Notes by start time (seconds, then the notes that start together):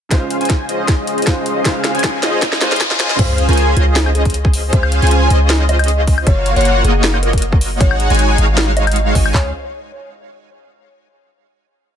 0.09 C#3 G#3 C#4 F4 G#4 C5 F5, kick, snare, closed hi-hat, riser
0.13 C5
0.30 closed hi-hat
0.41 C#4 F4 G#4 C5 G#5, closed hi-hat
0.45 closed hi-hat
0.50 kick, snare, closed hi-hat
0.69 C#4 F4 G#4 C5 D#5, closed hi-hat
0.88 kick, snare, closed hi-hat
1.07 closed hi-hat
1.18 closed hi-hat
1.22 C#3 G#3, closed hi-hat
1.27 F4 C5, kick, snare, closed hi-hat
1.46 closed hi-hat
1.63 C#3 G#3 C#4 F4 G#4 C5 F5, kick, snare, closed hi-hat
1.84 snare, closed hi-hat
1.95 C#4 F4 G#4 C5 G#5, closed hi-hat
1.99 closed hi-hat
2.04 kick, snare, closed hi-hat
2.23 C#4 F4 G#4 C5 D#5, snare, closed hi-hat
2.42 kick, snare, closed hi-hat, swell
2.52 snare
2.60 C#3 G#3 F4 C5, snare, closed hi-hat
2.72 snare, closed hi-hat
2.76 closed hi-hat
2.80 kick, snare, closed hi-hat
2.91 snare
2.99 C#3 G#3 F4 C5, snare, closed hi-hat
3.10 snare
3.19 C#2 C#4 F4 G#4 C5 F5, kick, closed hi-hat, crash, sub drop
3.38 closed hi-hat
3.48 C#2 C#4 F4 G#4 A#4 C5 G#5, closed hi-hat
3.53 closed hi-hat
3.57 closed hi-hat
3.76 C#2 C#4 F4 G#4 C5 D#5, closed hi-hat
3.96 snare, closed hi-hat
4.06 high woodblock
4.15 G#4, closed hi-hat
4.25 kick, closed hi-hat
4.30 closed hi-hat
4.34 closed hi-hat
4.45 kick
4.54 open hi-hat
4.73 C#2 C#4 F4 G#4 C5 F5, kick, closed hi-hat
4.83 high woodblock
4.92 closed hi-hat
5.02 C#2 C#4 F4 G#4 C5 G#5, closed hi-hat
5.07 closed hi-hat
5.11 closed hi-hat
5.30 C#2 C#4 F4 G#4 C5 D#5, closed hi-hat
5.50 snare, closed hi-hat
5.69 D#5, closed hi-hat
5.79 closed hi-hat, high woodblock
5.84 closed hi-hat
5.88 closed hi-hat
6.07 kick, open hi-hat
6.18 high woodblock
6.26 F#1 A#3 F4 F#4 C#5 F5, kick, closed hi-hat
6.46 closed hi-hat
6.56 F#1 A#3 F4 F#4 C#5 F#5, closed hi-hat
6.61 closed hi-hat
6.65 closed hi-hat
6.84 F#1 A#3 F4 F#4 G#4 C#5 D#5, closed hi-hat
7.04 snare, closed hi-hat
7.14 high woodblock
7.23 A#4, closed hi-hat
7.33 kick, closed hi-hat
7.38 closed hi-hat
7.42 closed hi-hat
7.53 kick
7.61 open hi-hat
7.80 G#1 G#3 D#4 F#4 C#5 F#5, kick, closed hi-hat
7.91 high woodblock
8.00 closed hi-hat
8.10 G#1 G#3 D#4 F#4 C#5 G#5, closed hi-hat
8.15 closed hi-hat
8.19 closed hi-hat
8.38 G#1 G#3 D#4 F#4 C#5 F5, closed hi-hat
8.57 snare, closed hi-hat
8.77 D#5, closed hi-hat
8.87 closed hi-hat, high woodblock
8.92 closed hi-hat
8.96 closed hi-hat
9.15 G#1 G#3 D#4 F#4 C#5 G#5, kick, open hi-hat
9.26 high woodblock
9.34 C#2 C#4 F4 G#4 C5 C#5 F5, kick, clap, floor tom